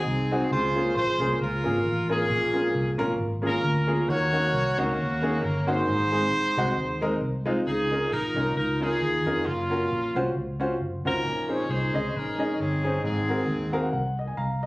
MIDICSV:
0, 0, Header, 1, 4, 480
1, 0, Start_track
1, 0, Key_signature, -5, "major"
1, 0, Tempo, 447427
1, 550, Time_signature, 4, 2, 24, 8
1, 15730, End_track
2, 0, Start_track
2, 0, Title_t, "Horn section"
2, 0, Program_c, 0, 61
2, 0, Note_on_c, 0, 60, 65
2, 0, Note_on_c, 0, 63, 67
2, 0, Note_on_c, 0, 68, 87
2, 512, Note_off_c, 0, 68, 0
2, 513, Note_off_c, 0, 63, 0
2, 515, Note_off_c, 0, 60, 0
2, 551, Note_on_c, 0, 72, 97
2, 552, Note_on_c, 0, 68, 77
2, 559, Note_on_c, 0, 65, 76
2, 1012, Note_off_c, 0, 72, 0
2, 1015, Note_off_c, 0, 68, 0
2, 1016, Note_off_c, 0, 65, 0
2, 1025, Note_on_c, 0, 72, 102
2, 1028, Note_on_c, 0, 68, 71
2, 1029, Note_on_c, 0, 65, 64
2, 1473, Note_off_c, 0, 72, 0
2, 1508, Note_off_c, 0, 65, 0
2, 1521, Note_on_c, 0, 65, 67
2, 1521, Note_on_c, 0, 70, 90
2, 1944, Note_off_c, 0, 68, 0
2, 2241, Note_off_c, 0, 65, 0
2, 2251, Note_on_c, 0, 61, 60
2, 2254, Note_on_c, 0, 65, 61
2, 2258, Note_on_c, 0, 68, 93
2, 2265, Note_off_c, 0, 70, 0
2, 3170, Note_off_c, 0, 61, 0
2, 3172, Note_off_c, 0, 65, 0
2, 3173, Note_off_c, 0, 68, 0
2, 3705, Note_on_c, 0, 61, 74
2, 3707, Note_on_c, 0, 70, 100
2, 3708, Note_on_c, 0, 65, 72
2, 4345, Note_off_c, 0, 61, 0
2, 4345, Note_off_c, 0, 70, 0
2, 4346, Note_off_c, 0, 65, 0
2, 4382, Note_on_c, 0, 73, 111
2, 4383, Note_on_c, 0, 66, 81
2, 4388, Note_on_c, 0, 70, 81
2, 5134, Note_off_c, 0, 73, 0
2, 5137, Note_off_c, 0, 66, 0
2, 5142, Note_on_c, 0, 58, 69
2, 5143, Note_on_c, 0, 61, 72
2, 5149, Note_on_c, 0, 66, 99
2, 5302, Note_off_c, 0, 70, 0
2, 5829, Note_off_c, 0, 66, 0
2, 5829, Note_on_c, 0, 70, 84
2, 6055, Note_off_c, 0, 58, 0
2, 6055, Note_off_c, 0, 61, 0
2, 6095, Note_on_c, 0, 63, 73
2, 6097, Note_off_c, 0, 70, 0
2, 6098, Note_on_c, 0, 68, 69
2, 6102, Note_on_c, 0, 72, 105
2, 7700, Note_off_c, 0, 63, 0
2, 7701, Note_off_c, 0, 68, 0
2, 7703, Note_off_c, 0, 72, 0
2, 8228, Note_on_c, 0, 68, 89
2, 8235, Note_on_c, 0, 63, 70
2, 8235, Note_on_c, 0, 65, 67
2, 8672, Note_off_c, 0, 68, 0
2, 8696, Note_off_c, 0, 63, 0
2, 8699, Note_off_c, 0, 65, 0
2, 8707, Note_on_c, 0, 70, 89
2, 8709, Note_on_c, 0, 63, 69
2, 8712, Note_on_c, 0, 65, 63
2, 9178, Note_off_c, 0, 70, 0
2, 9185, Note_off_c, 0, 63, 0
2, 9187, Note_off_c, 0, 65, 0
2, 9191, Note_on_c, 0, 70, 88
2, 9198, Note_on_c, 0, 63, 61
2, 9200, Note_on_c, 0, 65, 65
2, 9441, Note_off_c, 0, 70, 0
2, 9445, Note_off_c, 0, 63, 0
2, 9445, Note_off_c, 0, 65, 0
2, 9458, Note_on_c, 0, 63, 69
2, 9458, Note_on_c, 0, 65, 69
2, 9459, Note_on_c, 0, 68, 92
2, 10103, Note_off_c, 0, 63, 0
2, 10103, Note_off_c, 0, 65, 0
2, 10146, Note_off_c, 0, 68, 0
2, 10147, Note_on_c, 0, 58, 58
2, 10150, Note_on_c, 0, 65, 84
2, 10151, Note_on_c, 0, 61, 55
2, 11064, Note_off_c, 0, 58, 0
2, 11066, Note_off_c, 0, 61, 0
2, 11109, Note_off_c, 0, 65, 0
2, 11872, Note_on_c, 0, 61, 72
2, 11872, Note_on_c, 0, 63, 67
2, 11872, Note_on_c, 0, 70, 102
2, 12313, Note_off_c, 0, 70, 0
2, 12355, Note_on_c, 0, 73, 92
2, 12548, Note_off_c, 0, 63, 0
2, 12555, Note_off_c, 0, 73, 0
2, 12557, Note_on_c, 0, 72, 92
2, 12560, Note_on_c, 0, 68, 72
2, 12561, Note_on_c, 0, 63, 69
2, 12783, Note_off_c, 0, 61, 0
2, 13033, Note_off_c, 0, 72, 0
2, 13041, Note_off_c, 0, 63, 0
2, 13050, Note_on_c, 0, 70, 88
2, 13051, Note_on_c, 0, 61, 66
2, 13054, Note_on_c, 0, 63, 62
2, 13471, Note_off_c, 0, 68, 0
2, 13513, Note_off_c, 0, 61, 0
2, 13519, Note_off_c, 0, 70, 0
2, 13521, Note_on_c, 0, 60, 57
2, 13526, Note_on_c, 0, 61, 57
2, 13529, Note_on_c, 0, 68, 86
2, 13958, Note_off_c, 0, 63, 0
2, 13961, Note_off_c, 0, 60, 0
2, 13964, Note_off_c, 0, 61, 0
2, 13990, Note_off_c, 0, 68, 0
2, 13992, Note_on_c, 0, 63, 55
2, 13996, Note_on_c, 0, 60, 60
2, 14002, Note_on_c, 0, 68, 81
2, 14704, Note_off_c, 0, 68, 0
2, 14907, Note_off_c, 0, 63, 0
2, 14909, Note_off_c, 0, 60, 0
2, 15730, End_track
3, 0, Start_track
3, 0, Title_t, "Grand piano"
3, 0, Program_c, 1, 0
3, 333, Note_on_c, 1, 60, 80
3, 337, Note_on_c, 1, 63, 65
3, 346, Note_on_c, 1, 68, 81
3, 347, Note_on_c, 1, 66, 71
3, 472, Note_off_c, 1, 60, 0
3, 474, Note_off_c, 1, 63, 0
3, 479, Note_off_c, 1, 66, 0
3, 479, Note_off_c, 1, 68, 0
3, 554, Note_on_c, 1, 49, 64
3, 807, Note_on_c, 1, 61, 61
3, 808, Note_on_c, 1, 58, 71
3, 811, Note_on_c, 1, 65, 68
3, 817, Note_on_c, 1, 68, 75
3, 949, Note_off_c, 1, 58, 0
3, 949, Note_off_c, 1, 61, 0
3, 950, Note_off_c, 1, 65, 0
3, 954, Note_off_c, 1, 68, 0
3, 1260, Note_off_c, 1, 49, 0
3, 1283, Note_on_c, 1, 61, 66
3, 1286, Note_on_c, 1, 58, 71
3, 1289, Note_on_c, 1, 65, 71
3, 1298, Note_on_c, 1, 68, 88
3, 1426, Note_off_c, 1, 61, 0
3, 1427, Note_off_c, 1, 58, 0
3, 1429, Note_off_c, 1, 65, 0
3, 1433, Note_off_c, 1, 68, 0
3, 1755, Note_on_c, 1, 58, 74
3, 1760, Note_on_c, 1, 61, 66
3, 1771, Note_on_c, 1, 65, 69
3, 1772, Note_on_c, 1, 68, 81
3, 1901, Note_off_c, 1, 58, 0
3, 1904, Note_off_c, 1, 61, 0
3, 1909, Note_off_c, 1, 65, 0
3, 1910, Note_off_c, 1, 68, 0
3, 2245, Note_on_c, 1, 58, 78
3, 2247, Note_on_c, 1, 61, 71
3, 2251, Note_on_c, 1, 65, 74
3, 2258, Note_on_c, 1, 70, 83
3, 2386, Note_off_c, 1, 58, 0
3, 2387, Note_off_c, 1, 61, 0
3, 2389, Note_off_c, 1, 65, 0
3, 2392, Note_off_c, 1, 70, 0
3, 2459, Note_on_c, 1, 46, 71
3, 2718, Note_on_c, 1, 58, 70
3, 2724, Note_on_c, 1, 61, 63
3, 2724, Note_on_c, 1, 65, 60
3, 2727, Note_on_c, 1, 68, 71
3, 2862, Note_off_c, 1, 58, 0
3, 2865, Note_off_c, 1, 61, 0
3, 2865, Note_off_c, 1, 65, 0
3, 2866, Note_off_c, 1, 68, 0
3, 3170, Note_off_c, 1, 46, 0
3, 3197, Note_on_c, 1, 58, 82
3, 3202, Note_on_c, 1, 61, 84
3, 3202, Note_on_c, 1, 65, 80
3, 3207, Note_on_c, 1, 70, 106
3, 3341, Note_off_c, 1, 58, 0
3, 3343, Note_off_c, 1, 61, 0
3, 3344, Note_off_c, 1, 65, 0
3, 3346, Note_off_c, 1, 70, 0
3, 3666, Note_on_c, 1, 58, 73
3, 3672, Note_on_c, 1, 61, 72
3, 3673, Note_on_c, 1, 65, 72
3, 3678, Note_on_c, 1, 68, 83
3, 3815, Note_off_c, 1, 58, 0
3, 3818, Note_off_c, 1, 61, 0
3, 3818, Note_off_c, 1, 65, 0
3, 3821, Note_off_c, 1, 68, 0
3, 4153, Note_on_c, 1, 58, 75
3, 4156, Note_on_c, 1, 61, 68
3, 4161, Note_on_c, 1, 68, 85
3, 4162, Note_on_c, 1, 65, 73
3, 4298, Note_off_c, 1, 58, 0
3, 4300, Note_off_c, 1, 61, 0
3, 4302, Note_off_c, 1, 68, 0
3, 4303, Note_off_c, 1, 65, 0
3, 4371, Note_on_c, 1, 51, 65
3, 4638, Note_on_c, 1, 58, 73
3, 4643, Note_on_c, 1, 61, 61
3, 4645, Note_on_c, 1, 63, 61
3, 4651, Note_on_c, 1, 66, 70
3, 4780, Note_off_c, 1, 58, 0
3, 4783, Note_off_c, 1, 61, 0
3, 4784, Note_off_c, 1, 63, 0
3, 4787, Note_off_c, 1, 66, 0
3, 5085, Note_off_c, 1, 51, 0
3, 5125, Note_on_c, 1, 58, 79
3, 5126, Note_on_c, 1, 61, 75
3, 5131, Note_on_c, 1, 63, 68
3, 5135, Note_on_c, 1, 66, 80
3, 5264, Note_off_c, 1, 58, 0
3, 5264, Note_off_c, 1, 61, 0
3, 5267, Note_off_c, 1, 63, 0
3, 5269, Note_off_c, 1, 66, 0
3, 5603, Note_on_c, 1, 58, 80
3, 5603, Note_on_c, 1, 61, 66
3, 5606, Note_on_c, 1, 63, 61
3, 5612, Note_on_c, 1, 68, 86
3, 5742, Note_off_c, 1, 58, 0
3, 5742, Note_off_c, 1, 61, 0
3, 5744, Note_off_c, 1, 63, 0
3, 5747, Note_off_c, 1, 68, 0
3, 6080, Note_on_c, 1, 61, 74
3, 6083, Note_on_c, 1, 58, 79
3, 6088, Note_on_c, 1, 63, 77
3, 6089, Note_on_c, 1, 66, 89
3, 6221, Note_off_c, 1, 61, 0
3, 6222, Note_off_c, 1, 58, 0
3, 6225, Note_off_c, 1, 63, 0
3, 6226, Note_off_c, 1, 66, 0
3, 6293, Note_on_c, 1, 44, 66
3, 6562, Note_on_c, 1, 56, 73
3, 6569, Note_on_c, 1, 60, 65
3, 6571, Note_on_c, 1, 68, 77
3, 6572, Note_on_c, 1, 63, 63
3, 6702, Note_off_c, 1, 56, 0
3, 6706, Note_off_c, 1, 60, 0
3, 6707, Note_off_c, 1, 63, 0
3, 6707, Note_off_c, 1, 68, 0
3, 7007, Note_off_c, 1, 44, 0
3, 7054, Note_on_c, 1, 56, 83
3, 7058, Note_on_c, 1, 60, 73
3, 7062, Note_on_c, 1, 63, 78
3, 7064, Note_on_c, 1, 66, 101
3, 7188, Note_off_c, 1, 56, 0
3, 7190, Note_off_c, 1, 60, 0
3, 7192, Note_off_c, 1, 63, 0
3, 7193, Note_off_c, 1, 66, 0
3, 7525, Note_on_c, 1, 56, 90
3, 7532, Note_on_c, 1, 60, 79
3, 7533, Note_on_c, 1, 63, 85
3, 7534, Note_on_c, 1, 70, 99
3, 7664, Note_off_c, 1, 56, 0
3, 7667, Note_off_c, 1, 60, 0
3, 7668, Note_off_c, 1, 63, 0
3, 7668, Note_off_c, 1, 70, 0
3, 7998, Note_on_c, 1, 56, 93
3, 8004, Note_on_c, 1, 60, 86
3, 8006, Note_on_c, 1, 63, 86
3, 8007, Note_on_c, 1, 65, 93
3, 8141, Note_off_c, 1, 56, 0
3, 8144, Note_off_c, 1, 60, 0
3, 8144, Note_off_c, 1, 63, 0
3, 8145, Note_off_c, 1, 65, 0
3, 8224, Note_on_c, 1, 49, 62
3, 8486, Note_on_c, 1, 61, 69
3, 8487, Note_on_c, 1, 63, 58
3, 8494, Note_on_c, 1, 70, 71
3, 8496, Note_on_c, 1, 65, 54
3, 8625, Note_off_c, 1, 61, 0
3, 8625, Note_off_c, 1, 63, 0
3, 8629, Note_off_c, 1, 70, 0
3, 8630, Note_off_c, 1, 65, 0
3, 8933, Note_off_c, 1, 49, 0
3, 8965, Note_on_c, 1, 61, 73
3, 8968, Note_on_c, 1, 63, 62
3, 8970, Note_on_c, 1, 65, 57
3, 8981, Note_on_c, 1, 70, 69
3, 9105, Note_off_c, 1, 61, 0
3, 9106, Note_off_c, 1, 63, 0
3, 9107, Note_off_c, 1, 65, 0
3, 9112, Note_off_c, 1, 70, 0
3, 9446, Note_on_c, 1, 61, 71
3, 9451, Note_on_c, 1, 63, 58
3, 9451, Note_on_c, 1, 65, 63
3, 9458, Note_on_c, 1, 70, 77
3, 9585, Note_off_c, 1, 61, 0
3, 9588, Note_off_c, 1, 63, 0
3, 9588, Note_off_c, 1, 65, 0
3, 9592, Note_off_c, 1, 70, 0
3, 9933, Note_on_c, 1, 61, 70
3, 9936, Note_on_c, 1, 63, 68
3, 9936, Note_on_c, 1, 65, 70
3, 9941, Note_on_c, 1, 70, 75
3, 10069, Note_off_c, 1, 61, 0
3, 10071, Note_off_c, 1, 63, 0
3, 10071, Note_off_c, 1, 65, 0
3, 10073, Note_off_c, 1, 70, 0
3, 10404, Note_on_c, 1, 61, 70
3, 10407, Note_on_c, 1, 65, 60
3, 10415, Note_on_c, 1, 66, 56
3, 10418, Note_on_c, 1, 70, 72
3, 10545, Note_off_c, 1, 61, 0
3, 10546, Note_off_c, 1, 65, 0
3, 10551, Note_off_c, 1, 66, 0
3, 10552, Note_off_c, 1, 70, 0
3, 10895, Note_on_c, 1, 61, 79
3, 10899, Note_on_c, 1, 65, 72
3, 10901, Note_on_c, 1, 72, 97
3, 10905, Note_on_c, 1, 66, 80
3, 11031, Note_off_c, 1, 61, 0
3, 11033, Note_off_c, 1, 65, 0
3, 11034, Note_off_c, 1, 72, 0
3, 11036, Note_off_c, 1, 66, 0
3, 11368, Note_on_c, 1, 61, 88
3, 11378, Note_on_c, 1, 66, 79
3, 11378, Note_on_c, 1, 72, 93
3, 11379, Note_on_c, 1, 65, 77
3, 11508, Note_off_c, 1, 61, 0
3, 11513, Note_off_c, 1, 65, 0
3, 11513, Note_off_c, 1, 66, 0
3, 11513, Note_off_c, 1, 72, 0
3, 11855, Note_on_c, 1, 61, 73
3, 11856, Note_on_c, 1, 65, 66
3, 11862, Note_on_c, 1, 66, 70
3, 11865, Note_on_c, 1, 72, 81
3, 11992, Note_off_c, 1, 61, 0
3, 11992, Note_off_c, 1, 65, 0
3, 11995, Note_off_c, 1, 66, 0
3, 11996, Note_off_c, 1, 72, 0
3, 12055, Note_on_c, 1, 46, 60
3, 12320, Note_on_c, 1, 61, 65
3, 12323, Note_on_c, 1, 63, 62
3, 12328, Note_on_c, 1, 68, 67
3, 12331, Note_on_c, 1, 72, 72
3, 12464, Note_off_c, 1, 61, 0
3, 12466, Note_off_c, 1, 63, 0
3, 12468, Note_off_c, 1, 68, 0
3, 12470, Note_off_c, 1, 72, 0
3, 12771, Note_off_c, 1, 46, 0
3, 12807, Note_on_c, 1, 61, 68
3, 12810, Note_on_c, 1, 68, 66
3, 12812, Note_on_c, 1, 63, 62
3, 12818, Note_on_c, 1, 75, 79
3, 12948, Note_off_c, 1, 61, 0
3, 12949, Note_off_c, 1, 68, 0
3, 12950, Note_off_c, 1, 63, 0
3, 12954, Note_off_c, 1, 75, 0
3, 13282, Note_on_c, 1, 61, 77
3, 13293, Note_on_c, 1, 63, 64
3, 13293, Note_on_c, 1, 68, 68
3, 13297, Note_on_c, 1, 75, 79
3, 13425, Note_off_c, 1, 61, 0
3, 13431, Note_off_c, 1, 63, 0
3, 13431, Note_off_c, 1, 68, 0
3, 13433, Note_off_c, 1, 75, 0
3, 13770, Note_on_c, 1, 61, 73
3, 13774, Note_on_c, 1, 63, 66
3, 13778, Note_on_c, 1, 68, 74
3, 13780, Note_on_c, 1, 72, 74
3, 13909, Note_off_c, 1, 61, 0
3, 13911, Note_off_c, 1, 63, 0
3, 13913, Note_off_c, 1, 68, 0
3, 13914, Note_off_c, 1, 72, 0
3, 13991, Note_on_c, 1, 44, 68
3, 14254, Note_on_c, 1, 60, 64
3, 14255, Note_on_c, 1, 66, 59
3, 14260, Note_on_c, 1, 68, 60
3, 14264, Note_on_c, 1, 70, 71
3, 14391, Note_off_c, 1, 60, 0
3, 14392, Note_off_c, 1, 66, 0
3, 14394, Note_off_c, 1, 68, 0
3, 14396, Note_off_c, 1, 70, 0
3, 14698, Note_off_c, 1, 44, 0
3, 14724, Note_on_c, 1, 60, 83
3, 14727, Note_on_c, 1, 66, 67
3, 14729, Note_on_c, 1, 68, 70
3, 14729, Note_on_c, 1, 77, 67
3, 14733, Note_on_c, 1, 70, 96
3, 14831, Note_off_c, 1, 77, 0
3, 14837, Note_on_c, 1, 78, 62
3, 14866, Note_off_c, 1, 60, 0
3, 14868, Note_off_c, 1, 66, 0
3, 14868, Note_off_c, 1, 68, 0
3, 14871, Note_off_c, 1, 70, 0
3, 14927, Note_off_c, 1, 78, 0
3, 14943, Note_on_c, 1, 78, 67
3, 15198, Note_off_c, 1, 78, 0
3, 15221, Note_on_c, 1, 75, 57
3, 15314, Note_on_c, 1, 80, 57
3, 15415, Note_off_c, 1, 80, 0
3, 15418, Note_off_c, 1, 75, 0
3, 15419, Note_on_c, 1, 82, 66
3, 15420, Note_on_c, 1, 77, 67
3, 15682, Note_off_c, 1, 77, 0
3, 15694, Note_on_c, 1, 75, 68
3, 15730, Note_off_c, 1, 75, 0
3, 15730, Note_off_c, 1, 82, 0
3, 15730, End_track
4, 0, Start_track
4, 0, Title_t, "Fingered electric bass"
4, 0, Program_c, 2, 33
4, 70, Note_on_c, 2, 36, 78
4, 478, Note_off_c, 2, 36, 0
4, 550, Note_on_c, 2, 37, 88
4, 957, Note_off_c, 2, 37, 0
4, 1031, Note_on_c, 2, 34, 89
4, 1261, Note_off_c, 2, 34, 0
4, 1302, Note_on_c, 2, 36, 76
4, 1478, Note_off_c, 2, 36, 0
4, 1512, Note_on_c, 2, 37, 85
4, 1741, Note_off_c, 2, 37, 0
4, 1781, Note_on_c, 2, 32, 86
4, 1957, Note_off_c, 2, 32, 0
4, 1989, Note_on_c, 2, 33, 78
4, 2395, Note_off_c, 2, 33, 0
4, 2465, Note_on_c, 2, 34, 100
4, 2873, Note_off_c, 2, 34, 0
4, 2945, Note_on_c, 2, 36, 87
4, 3176, Note_off_c, 2, 36, 0
4, 3217, Note_on_c, 2, 34, 89
4, 3393, Note_off_c, 2, 34, 0
4, 3421, Note_on_c, 2, 32, 89
4, 3830, Note_off_c, 2, 32, 0
4, 3897, Note_on_c, 2, 38, 80
4, 4307, Note_off_c, 2, 38, 0
4, 4382, Note_on_c, 2, 39, 90
4, 4790, Note_off_c, 2, 39, 0
4, 4859, Note_on_c, 2, 36, 92
4, 5092, Note_off_c, 2, 36, 0
4, 5132, Note_on_c, 2, 37, 75
4, 5310, Note_off_c, 2, 37, 0
4, 5349, Note_on_c, 2, 39, 85
4, 5754, Note_off_c, 2, 39, 0
4, 5824, Note_on_c, 2, 31, 75
4, 6231, Note_off_c, 2, 31, 0
4, 6302, Note_on_c, 2, 32, 87
4, 6776, Note_off_c, 2, 32, 0
4, 6776, Note_on_c, 2, 34, 103
4, 7010, Note_off_c, 2, 34, 0
4, 7050, Note_on_c, 2, 36, 77
4, 7228, Note_off_c, 2, 36, 0
4, 7260, Note_on_c, 2, 39, 83
4, 7669, Note_off_c, 2, 39, 0
4, 7740, Note_on_c, 2, 36, 66
4, 8149, Note_off_c, 2, 36, 0
4, 8226, Note_on_c, 2, 37, 74
4, 8633, Note_off_c, 2, 37, 0
4, 8711, Note_on_c, 2, 34, 83
4, 8939, Note_off_c, 2, 34, 0
4, 8978, Note_on_c, 2, 36, 79
4, 9154, Note_off_c, 2, 36, 0
4, 9181, Note_on_c, 2, 37, 84
4, 9590, Note_off_c, 2, 37, 0
4, 9667, Note_on_c, 2, 39, 76
4, 9897, Note_off_c, 2, 39, 0
4, 9931, Note_on_c, 2, 41, 86
4, 10111, Note_off_c, 2, 41, 0
4, 10152, Note_on_c, 2, 30, 95
4, 10557, Note_off_c, 2, 30, 0
4, 10630, Note_on_c, 2, 34, 74
4, 10905, Note_off_c, 2, 34, 0
4, 10905, Note_on_c, 2, 36, 75
4, 11079, Note_off_c, 2, 36, 0
4, 11108, Note_on_c, 2, 37, 85
4, 11516, Note_off_c, 2, 37, 0
4, 11583, Note_on_c, 2, 30, 72
4, 11816, Note_off_c, 2, 30, 0
4, 11844, Note_on_c, 2, 37, 83
4, 12027, Note_off_c, 2, 37, 0
4, 12065, Note_on_c, 2, 34, 76
4, 12474, Note_off_c, 2, 34, 0
4, 12543, Note_on_c, 2, 36, 88
4, 12776, Note_off_c, 2, 36, 0
4, 12819, Note_on_c, 2, 37, 85
4, 12996, Note_off_c, 2, 37, 0
4, 13033, Note_on_c, 2, 34, 83
4, 13439, Note_off_c, 2, 34, 0
4, 13516, Note_on_c, 2, 31, 83
4, 13920, Note_off_c, 2, 31, 0
4, 13988, Note_on_c, 2, 32, 84
4, 14396, Note_off_c, 2, 32, 0
4, 14459, Note_on_c, 2, 39, 85
4, 14871, Note_off_c, 2, 39, 0
4, 14946, Note_on_c, 2, 36, 86
4, 15355, Note_off_c, 2, 36, 0
4, 15422, Note_on_c, 2, 36, 70
4, 15730, Note_off_c, 2, 36, 0
4, 15730, End_track
0, 0, End_of_file